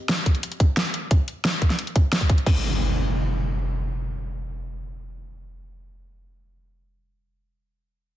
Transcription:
0.09 snare, closed hi-hat
0.26 kick, closed hi-hat
0.35 closed hi-hat
0.43 closed hi-hat
0.52 closed hi-hat
0.60 kick, closed hi-hat
0.77 snare, closed hi-hat
0.85 closed hi-hat
0.94 closed hi-hat
1.11 kick, closed hi-hat
1.28 closed hi-hat
1.45 snare, closed hi-hat
1.62 kick, closed hi-hat
1.70 snare, closed hi-hat
1.79 closed hi-hat
1.87 closed hi-hat
1.96 kick, closed hi-hat
2.13 snare, closed hi-hat
2.21 kick, closed hi-hat
2.30 kick, closed hi-hat
2.38 closed hi-hat
2.46 kick, crash, impact

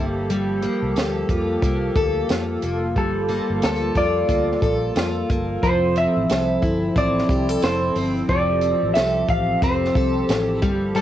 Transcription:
Already playing: G1 F3 G3 A#3 G4 A4
0.30 G3, closed hi-hat
0.62 A#3, closed hi-hat
0.82 C2
0.96 D2 A4, snare, closed hi-hat, tambourine
1.29 F2 F4, kick, closed hi-hat
1.62 C2 A#3, kick, closed hi-hat
1.96 D2 A4, kick, closed hi-hat
2.29 F2 F4, snare, closed hi-hat, tambourine
2.62 F1 A#3 F4, closed hi-hat
2.96 G1 G3 A4, kick, closed hi-hat
3.29 A#3, closed hi-hat
3.50 G1
3.62 D2 A4, snare, closed hi-hat, tambourine
3.95 F2 F4 D5, kick, closed hi-hat
4.29 D2 A#3, kick, closed hi-hat
4.51 snare
4.62 A#1 A4, kick, closed hi-hat
4.96 F2 F4, snare, closed hi-hat, tambourine
5.30 G1 A#3, kick, closed hi-hat
5.63 F1 F3 C4 E4 C5, kick, closed hi-hat
5.96 C4 E5, closed hi-hat
6.17 A1
6.29 C2 A4, snare, closed hi-hat, tambourine
6.62 G1 E4, kick, closed hi-hat
6.96 A1 C4 D5, kick, closed hi-hat
7.18 snare
7.29 C2 G4, kick, closed hi-hat
7.49 A4
7.62 F1 E4 C5, snare, closed hi-hat, tambourine
7.95 G1 C4, open hi-hat
8.27 F1 F3 G4 D5, kick, closed hi-hat
8.61 C4, closed hi-hat
8.83 A1
8.94 C2 A4 E5, snare, closed hi-hat, tambourine
9.28 A1 F5, kick, closed hi-hat
9.62 F1 C4 C5, kick, closed hi-hat
9.85 snare
9.95 C2 A4, kick, closed hi-hat
10.29 A1 E4, snare, closed hi-hat, tambourine
10.61 G1 F3 G3 A#3 A4, kick, closed hi-hat
10.95 G3 A4, closed hi-hat

